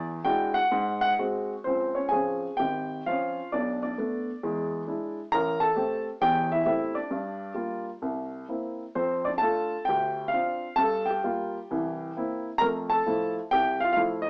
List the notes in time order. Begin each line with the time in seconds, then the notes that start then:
Already playing: E2
0.24 G#3 D4 E4 F#4 G5
0.54 F#5
0.72 G#2
1.01 F#5
1.19 G#3 C4 F#4
1.64 C#2 C4 C5
1.95 C#4 C#5
2.09 F3 C4 G#4 G#5
2.13 C#4
2.57 G#1 G4 G5
3.06 F3 C4 C#4 F4 F5
3.52 B1 D4 D5
3.83 D4 D5
3.98 A3 B3 D4
4.43 E2 G#3
4.87 G#3 D4 E4
5.32 A1 A#4 A#5
5.60 A4 A5
5.76 A3 C4 G4
6.21 E1 E2 G4 G5
6.52 E4 E5
6.66 A3 C4 E4 G4 E5
6.95 D4 D5
7.11 G2
7.54 G3 A#3 F4
8.02 C2
8.49 A#3 C4 E4
8.95 F2 C4 C5
9.25 D4 D5
9.38 D4 A4 A5
9.42 A3 F4
9.85 D2 G5
9.90 G4
10.28 F5
10.33 C4 D4 F4
10.76 G2 A5
10.82 A4
11.06 G5
11.11 G4
11.24 G3 A#3 F4
11.71 C2 E3
12.17 A#3 C4 E4
12.58 F2 A3 A#4 A#5
12.90 A4 A5
13.06 F3 A3 E4
13.51 C2 G4 G5
13.80 F4 F5
13.93 F3 A3 E4 F4 F5
14.22 D#5
14.27 D#4